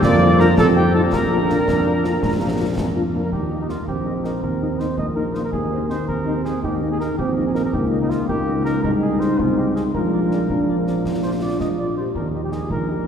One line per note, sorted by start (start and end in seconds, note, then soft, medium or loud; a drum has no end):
0.03 0.49 F2 medium
0.03 0.54 A#3 medium
0.03 0.37 D5 loud
0.03 0.39 D5 loud
0.03 0.41 D6 medium
0.03 concert bass drum medium
0.03 snare medium
0.21 0.28 A#3 medium
0.21 0.28 D4 medium
0.21 0.28 F4 medium
0.40 0.46 A#3 medium
0.40 0.46 D4 medium
0.40 0.46 F4 medium
0.40 0.48 A#4 medium
0.40 0.57 A#4 medium
0.40 0.57 A#5 loud
0.40 snare soft
0.58 1.04 F2 medium
0.58 1.09 C4 medium
0.58 0.76 A4 medium
0.58 0.67 A4 loud
0.58 0.64 A5 medium
0.58 concert bass drum medium
0.58 snare medium
0.76 0.83 C4 medium
0.76 0.83 D#4 medium
0.76 0.82 F4 medium
0.76 0.84 G4 medium
0.76 0.93 G5 medium
0.94 1.01 C4 medium
0.94 1.01 D#4 medium
0.94 1.01 F4 medium
0.94 1.11 A4 medium
0.94 1.03 A4 medium
0.94 1.01 A5 medium
1.12 1.59 A#1 medium
1.12 3.05 D4 medium
1.12 2.78 A#4 medium
1.12 2.74 A#4 medium
1.12 2.74 A#5 medium
1.12 concert bass drum medium
1.12 snare medium
1.31 1.38 A#3 medium
1.31 1.38 D4 medium
1.31 1.38 F4 soft
1.50 1.56 A#3 medium
1.50 1.56 D4 medium
1.50 1.56 F4 soft
1.50 snare soft
1.68 2.14 F2 medium
1.68 concert bass drum medium
1.68 snare medium
1.86 1.93 A#3 soft
1.86 1.93 D4 medium
1.86 1.93 F4 medium
2.04 2.11 A#3 soft
2.04 2.11 D4 medium
2.04 2.11 F4 soft
2.04 snare soft
2.22 2.68 A#1 medium
2.22 concert bass drum medium
2.22 snare medium
2.41 2.48 A#3 medium
2.41 2.48 D4 soft
2.41 2.48 F4 soft
2.59 2.66 A#3 soft
2.59 2.66 D4 medium
2.59 2.66 F4 soft
2.77 3.23 F2 medium
2.77 concert bass drum medium
2.77 snare medium
2.96 3.03 A#3 soft
2.96 3.03 D4 soft
2.96 3.03 F4 soft
3.14 3.21 A#3 medium
3.14 3.21 D4 soft
3.14 3.21 F4 soft
3.24 3.28 A#4 medium
3.32 3.79 D#2 soft
3.32 3.84 D#4 soft
3.32 3.58 G4 soft
3.32 concert bass drum soft
3.50 3.58 A#3 soft
3.50 3.58 D#4 soft
3.50 3.57 A#4 soft
3.50 3.57 D#5 soft
3.61 3.65 D#4 soft
3.68 3.76 A#3 soft
3.68 3.76 D#4 soft
3.68 3.87 F4 soft
3.68 3.75 A#4 soft
3.68 3.75 D#5 soft
3.68 snare soft
3.87 4.34 A#1 soft
3.87 5.00 C4 soft
3.87 4.26 G4 medium
3.87 concert bass drum soft
4.06 4.12 A#3 soft
4.06 4.13 D#4 soft
4.06 4.13 A#4 soft
4.06 4.13 D#5 soft
4.24 4.31 A#3 soft
4.24 4.31 D#4 soft
4.24 4.42 A#4 soft
4.24 4.31 A#4 soft
4.24 4.31 D#5 soft
4.24 snare soft
4.42 4.89 D#2 soft
4.42 4.81 A#4 soft
4.42 concert bass drum medium
4.61 4.68 A#3 soft
4.61 4.68 D#4 soft
4.61 4.68 A#4 soft
4.61 4.68 D#5 soft
4.79 4.86 A#3 soft
4.79 4.86 D#4 soft
4.79 4.86 A#4 soft
4.79 4.97 C5 soft
4.79 4.86 D#5 soft
4.79 snare soft
4.98 5.44 A#1 soft
4.98 6.10 A#3 soft
4.98 5.06 D#5 medium
4.98 concert bass drum soft
5.15 5.22 A#3 soft
5.15 5.22 D#4 soft
5.15 5.36 A#4 soft
5.15 5.23 A#4 soft
5.15 5.24 D#5 soft
5.34 5.40 A#3 soft
5.34 5.41 D#4 soft
5.34 5.42 A#4 soft
5.34 5.44 C5 medium
5.34 5.42 D#5 soft
5.34 snare soft
5.44 5.48 A#4 soft
5.52 5.95 D#2 soft
5.52 5.87 G#4 medium
5.52 concert bass drum medium
5.70 5.77 C4 soft
5.70 5.77 D#4 soft
5.70 5.78 C5 soft
5.70 5.78 D#5 soft
5.89 5.96 C4 soft
5.89 5.96 D#4 soft
5.89 6.07 C5 medium
5.89 5.97 C5 soft
5.89 5.97 D#5 soft
5.89 snare soft
6.07 6.54 D#2 soft
6.07 6.63 C4 soft
6.07 6.42 A#4 medium
6.07 concert bass drum soft
6.25 6.33 C4 soft
6.25 6.32 D#4 soft
6.25 6.33 C5 soft
6.25 6.33 D#5 soft
6.44 6.51 C4 soft
6.44 6.51 D#4 soft
6.44 6.62 G#4 medium
6.44 6.51 C5 soft
6.44 6.51 D#5 soft
6.44 snare soft
6.63 7.09 D#2 soft
6.63 7.15 D#4 medium
6.63 6.76 G4 medium
6.63 concert bass drum medium
6.82 6.88 A#3 soft
6.82 6.88 D#4 soft
6.82 6.88 A#4 soft
6.82 6.88 D#5 soft
6.92 6.99 G#4 medium
7.00 7.07 A#3 soft
7.00 7.07 D#4 soft
7.00 7.06 A#4 soft
7.00 7.17 A#4 medium
7.00 7.06 D#5 soft
7.00 snare soft
7.18 7.65 A#1 soft
7.18 7.76 C4 medium
7.18 7.30 G4 medium
7.18 concert bass drum medium
7.36 7.44 A#3 soft
7.36 7.44 D#4 soft
7.36 7.43 A#4 soft
7.36 7.43 D#5 soft
7.47 7.54 G#4 medium
7.54 7.62 A#3 soft
7.54 7.62 D#4 soft
7.54 7.61 A#4 soft
7.54 7.64 A#4 medium
7.54 7.61 D#5 soft
7.54 snare soft
7.65 7.69 A#4 medium
7.73 8.23 C#2 medium
7.73 8.25 A#3 soft
7.73 8.28 A#3 medium
7.73 8.25 D#4 soft
7.73 7.86 G4 medium
7.73 concert bass drum medium
7.91 7.98 A#4 soft
7.91 7.98 D#5 soft
8.02 8.11 D#4 medium
8.09 8.28 F4 medium
8.09 8.16 A#4 soft
8.09 8.16 D#5 soft
8.09 snare soft
8.28 8.78 C#2 medium
8.28 8.80 A#3 medium
8.28 8.81 A#3 soft
8.28 8.81 D#4 medium
8.28 8.63 G4 medium
8.28 concert bass drum medium
8.46 8.53 A#4 soft
8.46 8.53 D#5 soft
8.65 8.82 A#4 medium
8.65 8.72 A#4 soft
8.65 8.72 D#5 soft
8.65 snare soft
8.83 9.33 C2 medium
8.83 9.95 G#3 soft
8.83 9.41 D#4 medium
8.83 9.91 D#4 soft
8.83 8.92 A#4 medium
8.83 concert bass drum medium
9.02 9.21 G#4 medium
9.02 9.09 G#4 soft
9.02 9.09 D#5 soft
9.20 9.27 G#4 soft
9.20 9.40 C5 medium
9.20 9.27 D#5 soft
9.20 snare soft
9.39 9.88 C2 soft
9.39 9.75 C4 medium
9.39 9.60 F4 medium
9.39 concert bass drum medium
9.57 9.75 G4 medium
9.57 9.64 G#4 soft
9.57 9.64 D#5 soft
9.75 9.84 G#4 soft
9.75 9.82 G#4 soft
9.75 9.82 D#5 soft
9.75 snare soft
9.94 10.43 A#1 soft
9.94 11.97 F3 soft
9.94 11.97 D4 soft
9.94 10.43 D4 soft
9.94 11.97 F4 soft
9.94 11.19 A#4 medium
9.94 concert bass drum medium
10.13 10.19 F4 soft
10.13 10.19 D5 soft
10.31 10.38 F4 soft
10.31 10.38 D5 soft
10.31 snare soft
10.50 10.99 A#1 soft
10.50 10.80 D4 soft
10.50 concert bass drum medium
10.68 10.75 F4 soft
10.68 10.74 D5 soft
10.79 10.86 A#3 soft
10.86 10.95 C4 soft
10.86 10.93 F4 soft
10.86 10.93 D5 soft
10.86 snare soft
11.05 11.54 A#1 soft
11.05 11.43 D4 soft
11.05 concert bass drum soft
11.05 snare soft
11.23 11.31 F4 soft
11.23 11.31 C5 soft
11.23 11.31 D5 soft
11.41 11.60 F4 soft
11.41 11.49 F4 soft
11.41 11.59 D5 soft
11.41 11.49 D5 soft
11.60 12.01 A#1 soft
11.60 12.00 F4 soft
11.60 11.68 D#5 medium
11.60 concert bass drum soft
11.60 snare soft
11.78 11.85 F4 soft
11.78 11.95 D5 soft
11.78 11.85 D5 soft
11.97 12.03 F4 soft
11.97 12.16 G4 soft
11.97 12.05 C5 soft
11.97 12.03 D5 soft
12.15 12.61 D#2 soft
12.15 12.28 A#4 soft
12.15 concert bass drum medium
12.33 12.40 D#3 soft
12.33 12.40 D#4 soft
12.33 12.40 G4 soft
12.33 12.40 D#5 soft
12.44 12.54 G4 soft
12.51 12.58 D#3 soft
12.51 12.58 D#4 soft
12.51 12.58 G4 soft
12.51 12.71 G#4 soft
12.51 12.58 D#5 soft
12.51 snare soft
12.70 13.07 A#1 soft
12.70 13.07 D#4 soft
12.70 13.05 A#4 medium
12.70 concert bass drum medium
12.88 12.95 D#3 soft
12.88 12.95 D#4 soft
12.88 12.95 G4 soft
12.88 12.95 D#5 soft